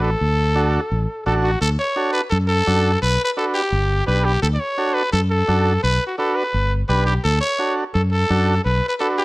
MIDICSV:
0, 0, Header, 1, 4, 480
1, 0, Start_track
1, 0, Key_signature, 2, "major"
1, 0, Tempo, 351906
1, 286, Time_signature, 4, 2, 24, 8
1, 12612, End_track
2, 0, Start_track
2, 0, Title_t, "Trumpet"
2, 0, Program_c, 0, 56
2, 31, Note_on_c, 0, 69, 98
2, 1663, Note_off_c, 0, 69, 0
2, 1719, Note_on_c, 0, 69, 87
2, 1828, Note_off_c, 0, 69, 0
2, 1959, Note_on_c, 0, 66, 87
2, 2185, Note_off_c, 0, 66, 0
2, 2203, Note_on_c, 0, 69, 101
2, 2312, Note_off_c, 0, 69, 0
2, 2439, Note_on_c, 0, 73, 92
2, 2888, Note_off_c, 0, 73, 0
2, 2908, Note_on_c, 0, 71, 96
2, 3020, Note_off_c, 0, 71, 0
2, 3136, Note_on_c, 0, 69, 85
2, 3250, Note_off_c, 0, 69, 0
2, 3384, Note_on_c, 0, 69, 109
2, 4063, Note_off_c, 0, 69, 0
2, 4120, Note_on_c, 0, 71, 109
2, 4420, Note_off_c, 0, 71, 0
2, 4433, Note_on_c, 0, 71, 96
2, 4508, Note_off_c, 0, 71, 0
2, 4603, Note_on_c, 0, 69, 85
2, 4711, Note_off_c, 0, 69, 0
2, 4830, Note_on_c, 0, 67, 85
2, 5506, Note_off_c, 0, 67, 0
2, 5550, Note_on_c, 0, 71, 101
2, 5795, Note_on_c, 0, 67, 99
2, 5816, Note_off_c, 0, 71, 0
2, 6028, Note_off_c, 0, 67, 0
2, 6036, Note_on_c, 0, 69, 94
2, 6103, Note_off_c, 0, 69, 0
2, 6192, Note_on_c, 0, 74, 76
2, 6274, Note_on_c, 0, 73, 96
2, 6295, Note_off_c, 0, 74, 0
2, 6744, Note_on_c, 0, 71, 93
2, 6764, Note_off_c, 0, 73, 0
2, 6986, Note_off_c, 0, 71, 0
2, 6995, Note_on_c, 0, 69, 94
2, 7105, Note_off_c, 0, 69, 0
2, 7234, Note_on_c, 0, 69, 93
2, 7909, Note_off_c, 0, 69, 0
2, 7957, Note_on_c, 0, 71, 105
2, 8258, Note_off_c, 0, 71, 0
2, 8277, Note_on_c, 0, 66, 70
2, 8425, Note_off_c, 0, 66, 0
2, 8433, Note_on_c, 0, 69, 83
2, 8674, Note_on_c, 0, 71, 94
2, 8695, Note_off_c, 0, 69, 0
2, 9181, Note_off_c, 0, 71, 0
2, 9394, Note_on_c, 0, 71, 93
2, 9623, Note_off_c, 0, 71, 0
2, 9636, Note_on_c, 0, 67, 90
2, 9746, Note_off_c, 0, 67, 0
2, 9874, Note_on_c, 0, 69, 103
2, 10096, Note_off_c, 0, 69, 0
2, 10104, Note_on_c, 0, 73, 98
2, 10561, Note_off_c, 0, 73, 0
2, 10832, Note_on_c, 0, 69, 83
2, 10943, Note_off_c, 0, 69, 0
2, 11076, Note_on_c, 0, 69, 98
2, 11751, Note_off_c, 0, 69, 0
2, 11795, Note_on_c, 0, 71, 95
2, 12098, Note_off_c, 0, 71, 0
2, 12120, Note_on_c, 0, 71, 81
2, 12194, Note_off_c, 0, 71, 0
2, 12278, Note_on_c, 0, 69, 82
2, 12388, Note_off_c, 0, 69, 0
2, 12524, Note_on_c, 0, 67, 91
2, 12612, Note_off_c, 0, 67, 0
2, 12612, End_track
3, 0, Start_track
3, 0, Title_t, "Transistor combo organ"
3, 0, Program_c, 1, 18
3, 0, Note_on_c, 1, 62, 73
3, 0, Note_on_c, 1, 66, 63
3, 0, Note_on_c, 1, 71, 79
3, 139, Note_off_c, 1, 62, 0
3, 142, Note_off_c, 1, 66, 0
3, 145, Note_off_c, 1, 71, 0
3, 756, Note_on_c, 1, 62, 88
3, 763, Note_on_c, 1, 66, 74
3, 765, Note_on_c, 1, 69, 100
3, 1097, Note_off_c, 1, 62, 0
3, 1101, Note_off_c, 1, 66, 0
3, 1102, Note_off_c, 1, 69, 0
3, 1722, Note_on_c, 1, 62, 81
3, 1724, Note_on_c, 1, 66, 77
3, 1729, Note_on_c, 1, 69, 97
3, 2060, Note_off_c, 1, 62, 0
3, 2061, Note_off_c, 1, 66, 0
3, 2063, Note_off_c, 1, 69, 0
3, 2674, Note_on_c, 1, 62, 75
3, 2680, Note_on_c, 1, 66, 71
3, 2690, Note_on_c, 1, 69, 85
3, 3016, Note_off_c, 1, 62, 0
3, 3019, Note_off_c, 1, 66, 0
3, 3024, Note_off_c, 1, 69, 0
3, 3640, Note_on_c, 1, 62, 72
3, 3644, Note_on_c, 1, 66, 66
3, 3651, Note_on_c, 1, 69, 85
3, 3979, Note_off_c, 1, 62, 0
3, 3981, Note_off_c, 1, 66, 0
3, 3984, Note_off_c, 1, 69, 0
3, 4596, Note_on_c, 1, 62, 74
3, 4601, Note_on_c, 1, 66, 70
3, 4607, Note_on_c, 1, 71, 81
3, 4936, Note_off_c, 1, 62, 0
3, 4939, Note_off_c, 1, 66, 0
3, 4942, Note_off_c, 1, 71, 0
3, 5555, Note_on_c, 1, 62, 73
3, 5558, Note_on_c, 1, 67, 62
3, 5562, Note_on_c, 1, 71, 73
3, 5896, Note_off_c, 1, 62, 0
3, 5897, Note_off_c, 1, 67, 0
3, 5899, Note_off_c, 1, 71, 0
3, 6515, Note_on_c, 1, 62, 79
3, 6521, Note_on_c, 1, 66, 69
3, 6524, Note_on_c, 1, 69, 92
3, 6856, Note_off_c, 1, 62, 0
3, 6859, Note_off_c, 1, 66, 0
3, 6861, Note_off_c, 1, 69, 0
3, 7474, Note_on_c, 1, 62, 76
3, 7483, Note_on_c, 1, 66, 70
3, 7485, Note_on_c, 1, 69, 83
3, 7815, Note_off_c, 1, 62, 0
3, 7820, Note_off_c, 1, 66, 0
3, 7821, Note_off_c, 1, 69, 0
3, 8435, Note_on_c, 1, 62, 70
3, 8442, Note_on_c, 1, 66, 76
3, 8448, Note_on_c, 1, 71, 86
3, 8776, Note_off_c, 1, 62, 0
3, 8780, Note_off_c, 1, 66, 0
3, 8782, Note_off_c, 1, 71, 0
3, 9398, Note_on_c, 1, 62, 77
3, 9399, Note_on_c, 1, 67, 71
3, 9404, Note_on_c, 1, 71, 74
3, 9737, Note_off_c, 1, 62, 0
3, 9738, Note_off_c, 1, 67, 0
3, 9740, Note_off_c, 1, 71, 0
3, 10351, Note_on_c, 1, 62, 72
3, 10356, Note_on_c, 1, 66, 73
3, 10365, Note_on_c, 1, 69, 79
3, 10694, Note_off_c, 1, 62, 0
3, 10697, Note_off_c, 1, 66, 0
3, 10702, Note_off_c, 1, 69, 0
3, 11321, Note_on_c, 1, 62, 72
3, 11326, Note_on_c, 1, 66, 69
3, 11333, Note_on_c, 1, 69, 80
3, 11660, Note_off_c, 1, 62, 0
3, 11662, Note_off_c, 1, 66, 0
3, 11665, Note_off_c, 1, 69, 0
3, 12280, Note_on_c, 1, 62, 78
3, 12285, Note_on_c, 1, 66, 64
3, 12292, Note_on_c, 1, 71, 89
3, 12612, Note_off_c, 1, 62, 0
3, 12612, Note_off_c, 1, 66, 0
3, 12612, Note_off_c, 1, 71, 0
3, 12612, End_track
4, 0, Start_track
4, 0, Title_t, "Fingered electric bass"
4, 0, Program_c, 2, 33
4, 0, Note_on_c, 2, 33, 85
4, 191, Note_off_c, 2, 33, 0
4, 288, Note_on_c, 2, 38, 88
4, 1055, Note_off_c, 2, 38, 0
4, 1248, Note_on_c, 2, 33, 92
4, 1439, Note_off_c, 2, 33, 0
4, 1726, Note_on_c, 2, 33, 81
4, 2110, Note_off_c, 2, 33, 0
4, 2202, Note_on_c, 2, 38, 81
4, 2395, Note_off_c, 2, 38, 0
4, 3166, Note_on_c, 2, 42, 90
4, 3549, Note_off_c, 2, 42, 0
4, 3648, Note_on_c, 2, 42, 88
4, 4031, Note_off_c, 2, 42, 0
4, 4126, Note_on_c, 2, 35, 89
4, 4318, Note_off_c, 2, 35, 0
4, 5079, Note_on_c, 2, 31, 94
4, 5465, Note_off_c, 2, 31, 0
4, 5563, Note_on_c, 2, 35, 86
4, 5948, Note_off_c, 2, 35, 0
4, 6038, Note_on_c, 2, 38, 99
4, 6233, Note_off_c, 2, 38, 0
4, 7000, Note_on_c, 2, 42, 102
4, 7386, Note_off_c, 2, 42, 0
4, 7482, Note_on_c, 2, 42, 89
4, 7867, Note_off_c, 2, 42, 0
4, 7961, Note_on_c, 2, 35, 90
4, 8155, Note_off_c, 2, 35, 0
4, 8923, Note_on_c, 2, 31, 94
4, 9308, Note_off_c, 2, 31, 0
4, 9400, Note_on_c, 2, 35, 90
4, 9786, Note_off_c, 2, 35, 0
4, 9886, Note_on_c, 2, 38, 93
4, 10078, Note_off_c, 2, 38, 0
4, 10844, Note_on_c, 2, 42, 87
4, 11229, Note_off_c, 2, 42, 0
4, 11325, Note_on_c, 2, 42, 93
4, 11709, Note_off_c, 2, 42, 0
4, 11807, Note_on_c, 2, 35, 91
4, 11999, Note_off_c, 2, 35, 0
4, 12612, End_track
0, 0, End_of_file